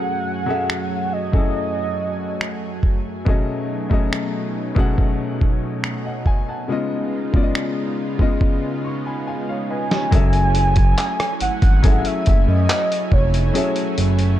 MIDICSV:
0, 0, Header, 1, 6, 480
1, 0, Start_track
1, 0, Tempo, 857143
1, 1828, Time_signature, 4, 2, 24, 8
1, 8062, End_track
2, 0, Start_track
2, 0, Title_t, "Soft synth lead"
2, 0, Program_c, 0, 80
2, 0, Note_on_c, 0, 78, 115
2, 631, Note_on_c, 0, 75, 101
2, 640, Note_off_c, 0, 78, 0
2, 1590, Note_off_c, 0, 75, 0
2, 5436, Note_on_c, 0, 80, 122
2, 6370, Note_off_c, 0, 80, 0
2, 6393, Note_on_c, 0, 78, 109
2, 6756, Note_on_c, 0, 76, 91
2, 6765, Note_off_c, 0, 78, 0
2, 6995, Note_on_c, 0, 75, 98
2, 7003, Note_off_c, 0, 76, 0
2, 7353, Note_on_c, 0, 73, 90
2, 7362, Note_off_c, 0, 75, 0
2, 7831, Note_off_c, 0, 73, 0
2, 8062, End_track
3, 0, Start_track
3, 0, Title_t, "Grand piano"
3, 0, Program_c, 1, 0
3, 0, Control_c, 1, 64, 127
3, 0, Note_on_c, 1, 54, 68
3, 0, Note_on_c, 1, 61, 58
3, 0, Note_on_c, 1, 68, 57
3, 0, Note_on_c, 1, 69, 60
3, 0, Note_on_c, 1, 78, 78
3, 245, Note_off_c, 1, 54, 0
3, 248, Note_off_c, 1, 61, 0
3, 251, Note_off_c, 1, 68, 0
3, 254, Note_off_c, 1, 69, 0
3, 257, Note_off_c, 1, 78, 0
3, 258, Note_on_c, 1, 54, 76
3, 264, Note_on_c, 1, 61, 74
3, 271, Note_on_c, 1, 68, 73
3, 276, Note_on_c, 1, 69, 72
3, 282, Note_on_c, 1, 76, 87
3, 719, Note_off_c, 1, 54, 0
3, 722, Note_off_c, 1, 61, 0
3, 725, Note_off_c, 1, 68, 0
3, 728, Note_off_c, 1, 69, 0
3, 731, Note_off_c, 1, 76, 0
3, 741, Note_on_c, 1, 54, 67
3, 747, Note_on_c, 1, 61, 65
3, 752, Note_on_c, 1, 68, 65
3, 758, Note_on_c, 1, 69, 67
3, 764, Note_on_c, 1, 64, 79
3, 1656, Note_off_c, 1, 54, 0
3, 1660, Note_off_c, 1, 61, 0
3, 1662, Note_off_c, 1, 68, 0
3, 1665, Note_off_c, 1, 69, 0
3, 1668, Note_off_c, 1, 64, 0
3, 1821, Note_on_c, 1, 47, 77
3, 1826, Note_on_c, 1, 54, 73
3, 1830, Note_on_c, 1, 57, 72
3, 1836, Control_c, 1, 64, 0
3, 1836, Note_on_c, 1, 61, 74
3, 1839, Note_on_c, 1, 68, 77
3, 1844, Note_on_c, 1, 75, 90
3, 1928, Control_c, 1, 64, 127
3, 2167, Note_off_c, 1, 47, 0
3, 2169, Note_off_c, 1, 54, 0
3, 2171, Note_off_c, 1, 57, 0
3, 2174, Note_off_c, 1, 61, 0
3, 2176, Note_off_c, 1, 68, 0
3, 2178, Note_off_c, 1, 75, 0
3, 2181, Note_on_c, 1, 47, 78
3, 2185, Note_on_c, 1, 54, 74
3, 2190, Note_on_c, 1, 57, 75
3, 2195, Note_on_c, 1, 61, 72
3, 2200, Note_on_c, 1, 68, 75
3, 2203, Note_on_c, 1, 75, 88
3, 2641, Note_off_c, 1, 47, 0
3, 2643, Note_off_c, 1, 54, 0
3, 2645, Note_off_c, 1, 57, 0
3, 2648, Note_off_c, 1, 61, 0
3, 2650, Note_off_c, 1, 68, 0
3, 2652, Note_off_c, 1, 75, 0
3, 2659, Note_on_c, 1, 47, 87
3, 2664, Note_on_c, 1, 54, 80
3, 2668, Note_on_c, 1, 57, 83
3, 2673, Note_on_c, 1, 61, 78
3, 2677, Note_on_c, 1, 68, 77
3, 2682, Note_on_c, 1, 78, 95
3, 3275, Note_off_c, 1, 78, 0
3, 3391, Note_on_c, 1, 78, 60
3, 3395, Note_on_c, 1, 75, 51
3, 3504, Note_off_c, 1, 78, 0
3, 3506, Note_off_c, 1, 75, 0
3, 3511, Note_on_c, 1, 80, 66
3, 3575, Note_off_c, 1, 47, 0
3, 3578, Note_off_c, 1, 54, 0
3, 3580, Note_off_c, 1, 57, 0
3, 3583, Note_off_c, 1, 61, 0
3, 3585, Note_off_c, 1, 68, 0
3, 3624, Note_off_c, 1, 80, 0
3, 3632, Note_on_c, 1, 81, 61
3, 3636, Note_on_c, 1, 78, 49
3, 3741, Note_on_c, 1, 49, 80
3, 3746, Note_on_c, 1, 56, 74
3, 3753, Note_on_c, 1, 59, 75
3, 3756, Control_c, 1, 64, 0
3, 3759, Note_on_c, 1, 65, 74
3, 3764, Note_on_c, 1, 75, 92
3, 3849, Control_c, 1, 64, 127
3, 3858, Note_off_c, 1, 81, 0
3, 3860, Note_off_c, 1, 78, 0
3, 4087, Note_off_c, 1, 49, 0
3, 4089, Note_off_c, 1, 56, 0
3, 4092, Note_off_c, 1, 59, 0
3, 4095, Note_off_c, 1, 65, 0
3, 4098, Note_off_c, 1, 75, 0
3, 4102, Note_on_c, 1, 49, 81
3, 4107, Note_on_c, 1, 56, 76
3, 4113, Note_on_c, 1, 59, 77
3, 4119, Note_on_c, 1, 65, 74
3, 4124, Note_on_c, 1, 74, 73
3, 4153, Note_off_c, 1, 74, 0
3, 4160, Note_on_c, 1, 75, 88
3, 4561, Note_off_c, 1, 49, 0
3, 4564, Note_off_c, 1, 56, 0
3, 4567, Note_off_c, 1, 59, 0
3, 4570, Note_off_c, 1, 65, 0
3, 4582, Note_on_c, 1, 49, 85
3, 4588, Note_on_c, 1, 56, 78
3, 4590, Note_off_c, 1, 75, 0
3, 4594, Note_on_c, 1, 59, 76
3, 4599, Note_on_c, 1, 65, 78
3, 4606, Note_on_c, 1, 75, 93
3, 4954, Note_on_c, 1, 85, 57
3, 4957, Note_off_c, 1, 75, 0
3, 5065, Note_off_c, 1, 85, 0
3, 5072, Note_on_c, 1, 83, 63
3, 5076, Note_on_c, 1, 80, 58
3, 5184, Note_off_c, 1, 83, 0
3, 5185, Note_off_c, 1, 80, 0
3, 5194, Note_on_c, 1, 80, 63
3, 5196, Note_on_c, 1, 77, 51
3, 5305, Note_off_c, 1, 77, 0
3, 5305, Note_off_c, 1, 80, 0
3, 5314, Note_on_c, 1, 77, 66
3, 5316, Note_on_c, 1, 73, 52
3, 5425, Note_off_c, 1, 77, 0
3, 5427, Note_off_c, 1, 73, 0
3, 5432, Note_on_c, 1, 75, 61
3, 5436, Note_on_c, 1, 71, 55
3, 5497, Note_off_c, 1, 49, 0
3, 5500, Note_off_c, 1, 56, 0
3, 5503, Note_off_c, 1, 59, 0
3, 5505, Note_off_c, 1, 65, 0
3, 5544, Note_off_c, 1, 75, 0
3, 5546, Note_off_c, 1, 71, 0
3, 5553, Note_on_c, 1, 73, 58
3, 5661, Note_on_c, 1, 54, 75
3, 5666, Note_on_c, 1, 61, 69
3, 5672, Note_on_c, 1, 68, 71
3, 5675, Control_c, 1, 64, 0
3, 5678, Note_on_c, 1, 69, 70
3, 5684, Note_on_c, 1, 76, 84
3, 5770, Control_c, 1, 64, 127
3, 5779, Note_off_c, 1, 73, 0
3, 6576, Note_off_c, 1, 54, 0
3, 6579, Note_off_c, 1, 61, 0
3, 6582, Note_off_c, 1, 68, 0
3, 6585, Note_off_c, 1, 69, 0
3, 6588, Note_off_c, 1, 76, 0
3, 6623, Note_on_c, 1, 54, 76
3, 6628, Note_on_c, 1, 61, 74
3, 6634, Note_on_c, 1, 68, 75
3, 6640, Note_on_c, 1, 69, 71
3, 6646, Note_on_c, 1, 64, 87
3, 7537, Note_off_c, 1, 54, 0
3, 7540, Note_off_c, 1, 61, 0
3, 7543, Note_off_c, 1, 68, 0
3, 7546, Note_off_c, 1, 69, 0
3, 7549, Note_off_c, 1, 64, 0
3, 7580, Note_on_c, 1, 54, 79
3, 7585, Note_on_c, 1, 61, 70
3, 7592, Note_on_c, 1, 68, 75
3, 7598, Note_on_c, 1, 69, 72
3, 7603, Note_on_c, 1, 76, 87
3, 8062, Note_off_c, 1, 54, 0
3, 8062, Note_off_c, 1, 61, 0
3, 8062, Note_off_c, 1, 68, 0
3, 8062, Note_off_c, 1, 69, 0
3, 8062, Note_off_c, 1, 76, 0
3, 8062, End_track
4, 0, Start_track
4, 0, Title_t, "Analog synth pad"
4, 0, Program_c, 2, 89
4, 0, Note_on_c, 2, 42, 65
4, 0, Note_on_c, 2, 54, 64
4, 0, Note_on_c, 2, 57, 59
4, 0, Note_on_c, 2, 66, 61
4, 0, Note_on_c, 2, 80, 72
4, 1806, Note_off_c, 2, 42, 0
4, 1809, Note_off_c, 2, 66, 0
4, 1830, Note_on_c, 2, 47, 65
4, 1831, Note_on_c, 2, 61, 61
4, 1831, Note_on_c, 2, 63, 63
4, 3725, Note_off_c, 2, 54, 0
4, 3726, Note_off_c, 2, 57, 0
4, 3726, Note_off_c, 2, 80, 0
4, 3730, Note_off_c, 2, 47, 0
4, 3730, Note_off_c, 2, 61, 0
4, 3731, Note_off_c, 2, 63, 0
4, 3747, Note_on_c, 2, 59, 61
4, 3747, Note_on_c, 2, 63, 60
4, 3747, Note_on_c, 2, 65, 80
4, 3748, Note_on_c, 2, 56, 62
4, 3749, Note_on_c, 2, 49, 72
4, 5648, Note_off_c, 2, 63, 0
4, 5649, Note_off_c, 2, 49, 0
4, 5649, Note_off_c, 2, 56, 0
4, 5649, Note_off_c, 2, 59, 0
4, 5649, Note_off_c, 2, 65, 0
4, 5668, Note_on_c, 2, 54, 77
4, 5668, Note_on_c, 2, 57, 77
4, 5668, Note_on_c, 2, 61, 66
4, 5668, Note_on_c, 2, 80, 68
4, 5669, Note_on_c, 2, 64, 69
4, 8062, Note_off_c, 2, 54, 0
4, 8062, Note_off_c, 2, 57, 0
4, 8062, Note_off_c, 2, 61, 0
4, 8062, Note_off_c, 2, 64, 0
4, 8062, Note_off_c, 2, 80, 0
4, 8062, End_track
5, 0, Start_track
5, 0, Title_t, "Analog synth bass"
5, 0, Program_c, 3, 38
5, 5669, Note_on_c, 3, 30, 99
5, 6126, Note_off_c, 3, 30, 0
5, 6390, Note_on_c, 3, 32, 54
5, 6437, Note_off_c, 3, 32, 0
5, 6508, Note_on_c, 3, 32, 99
5, 6728, Note_off_c, 3, 32, 0
5, 6872, Note_on_c, 3, 30, 94
5, 6980, Note_off_c, 3, 30, 0
5, 6989, Note_on_c, 3, 42, 102
5, 7099, Note_off_c, 3, 42, 0
5, 7345, Note_on_c, 3, 29, 94
5, 7566, Note_off_c, 3, 29, 0
5, 7829, Note_on_c, 3, 30, 101
5, 8048, Note_off_c, 3, 30, 0
5, 8062, End_track
6, 0, Start_track
6, 0, Title_t, "Drums"
6, 390, Note_on_c, 9, 26, 98
6, 446, Note_off_c, 9, 26, 0
6, 747, Note_on_c, 9, 36, 85
6, 803, Note_off_c, 9, 36, 0
6, 1350, Note_on_c, 9, 26, 113
6, 1406, Note_off_c, 9, 26, 0
6, 1585, Note_on_c, 9, 36, 80
6, 1641, Note_off_c, 9, 36, 0
6, 1828, Note_on_c, 9, 36, 104
6, 1884, Note_off_c, 9, 36, 0
6, 2189, Note_on_c, 9, 36, 85
6, 2245, Note_off_c, 9, 36, 0
6, 2311, Note_on_c, 9, 26, 110
6, 2367, Note_off_c, 9, 26, 0
6, 2668, Note_on_c, 9, 36, 93
6, 2724, Note_off_c, 9, 36, 0
6, 2789, Note_on_c, 9, 36, 86
6, 2845, Note_off_c, 9, 36, 0
6, 3032, Note_on_c, 9, 36, 84
6, 3088, Note_off_c, 9, 36, 0
6, 3269, Note_on_c, 9, 26, 119
6, 3325, Note_off_c, 9, 26, 0
6, 3504, Note_on_c, 9, 36, 77
6, 3560, Note_off_c, 9, 36, 0
6, 4109, Note_on_c, 9, 36, 84
6, 4165, Note_off_c, 9, 36, 0
6, 4229, Note_on_c, 9, 26, 102
6, 4285, Note_off_c, 9, 26, 0
6, 4588, Note_on_c, 9, 36, 88
6, 4644, Note_off_c, 9, 36, 0
6, 4709, Note_on_c, 9, 36, 91
6, 4765, Note_off_c, 9, 36, 0
6, 5552, Note_on_c, 9, 38, 78
6, 5608, Note_off_c, 9, 38, 0
6, 5669, Note_on_c, 9, 36, 124
6, 5670, Note_on_c, 9, 42, 77
6, 5725, Note_off_c, 9, 36, 0
6, 5726, Note_off_c, 9, 42, 0
6, 5784, Note_on_c, 9, 42, 45
6, 5840, Note_off_c, 9, 42, 0
6, 5906, Note_on_c, 9, 42, 69
6, 5962, Note_off_c, 9, 42, 0
6, 6024, Note_on_c, 9, 42, 47
6, 6030, Note_on_c, 9, 36, 96
6, 6080, Note_off_c, 9, 42, 0
6, 6086, Note_off_c, 9, 36, 0
6, 6148, Note_on_c, 9, 42, 80
6, 6150, Note_on_c, 9, 39, 116
6, 6204, Note_off_c, 9, 42, 0
6, 6206, Note_off_c, 9, 39, 0
6, 6271, Note_on_c, 9, 37, 98
6, 6273, Note_on_c, 9, 42, 59
6, 6327, Note_off_c, 9, 37, 0
6, 6329, Note_off_c, 9, 42, 0
6, 6387, Note_on_c, 9, 42, 76
6, 6443, Note_off_c, 9, 42, 0
6, 6508, Note_on_c, 9, 42, 53
6, 6509, Note_on_c, 9, 36, 106
6, 6564, Note_off_c, 9, 42, 0
6, 6565, Note_off_c, 9, 36, 0
6, 6629, Note_on_c, 9, 42, 80
6, 6630, Note_on_c, 9, 36, 101
6, 6685, Note_off_c, 9, 42, 0
6, 6686, Note_off_c, 9, 36, 0
6, 6747, Note_on_c, 9, 42, 60
6, 6803, Note_off_c, 9, 42, 0
6, 6865, Note_on_c, 9, 42, 63
6, 6873, Note_on_c, 9, 36, 101
6, 6921, Note_off_c, 9, 42, 0
6, 6929, Note_off_c, 9, 36, 0
6, 7111, Note_on_c, 9, 39, 127
6, 7111, Note_on_c, 9, 42, 77
6, 7167, Note_off_c, 9, 39, 0
6, 7167, Note_off_c, 9, 42, 0
6, 7234, Note_on_c, 9, 42, 55
6, 7290, Note_off_c, 9, 42, 0
6, 7346, Note_on_c, 9, 36, 89
6, 7402, Note_off_c, 9, 36, 0
6, 7470, Note_on_c, 9, 42, 71
6, 7526, Note_off_c, 9, 42, 0
6, 7589, Note_on_c, 9, 42, 76
6, 7645, Note_off_c, 9, 42, 0
6, 7704, Note_on_c, 9, 42, 45
6, 7760, Note_off_c, 9, 42, 0
6, 7827, Note_on_c, 9, 42, 70
6, 7883, Note_off_c, 9, 42, 0
6, 7944, Note_on_c, 9, 42, 47
6, 8000, Note_off_c, 9, 42, 0
6, 8062, End_track
0, 0, End_of_file